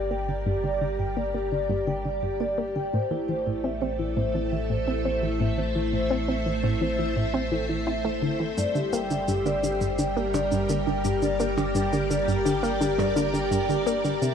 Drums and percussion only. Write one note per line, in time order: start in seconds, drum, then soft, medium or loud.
8.58 shaker medium
8.75 shaker soft
8.93 shaker medium
9.11 shaker soft
9.28 shaker medium
9.46 shaker soft
9.63 shaker medium
9.81 shaker medium
9.99 shaker medium
10.34 percussion blips soft
10.34 shaker medium
10.51 shaker soft
10.69 shaker medium
11.04 shaker medium
11.22 shaker medium
11.40 shaker medium
11.58 percussion blips soft
11.58 shaker soft
11.75 shaker medium
11.93 shaker soft
12.11 shaker medium
12.28 shaker soft
12.46 shaker medium
12.64 shaker medium
12.81 shaker medium
12.99 percussion blips medium
12.99 shaker soft
13.17 shaker medium
13.34 shaker soft
13.52 shaker medium
13.70 shaker soft
13.87 shaker medium
14.05 shaker medium
14.22 shaker medium